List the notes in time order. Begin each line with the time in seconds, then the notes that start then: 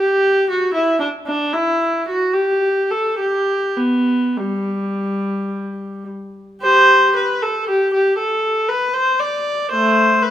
0.00 G4
0.50 F#4
0.74 E4
1.00 D4
1.27 D4
1.53 E4
2.08 F#4
2.33 G4
2.90 A4
3.20 G4
3.78 B3
4.37 G3
6.62 G4 C5
7.16 B4
7.42 A4
7.69 G4
7.94 G4
8.18 A4
8.68 B4
8.93 C5
9.20 D5
9.71 A3 C5
10.22 B4